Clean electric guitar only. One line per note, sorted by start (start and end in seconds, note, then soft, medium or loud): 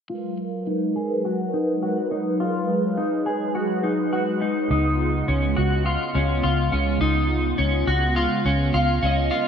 0.10 0.67 F4 medium
0.67 0.96 D#4 medium
0.96 1.24 G#4 medium
1.25 1.53 F#4 medium
1.53 1.82 D#4 medium
1.83 2.11 F#4 medium
2.11 2.40 D#4 medium
2.40 2.98 F4 medium
2.97 3.26 D#4 medium
3.26 3.55 G#4 medium
3.55 3.84 F#4 medium
3.83 4.12 D#4 medium
4.13 4.42 F#4 medium
4.41 4.70 D#4 medium
4.71 5.28 D#4 medium
5.28 5.57 C#4 medium
5.57 5.85 F#4 medium
5.86 6.15 F4 medium
6.15 6.44 C#4 medium
6.43 6.72 F4 medium
6.72 7.00 C#4 medium
7.01 7.58 D#4 medium
7.58 7.87 C#4 medium
7.87 8.16 F#4 medium
8.16 8.45 F4 medium
8.46 8.74 C#4 medium
8.74 9.03 F4 medium
9.02 9.32 C#4 medium
9.31 9.48 F4 medium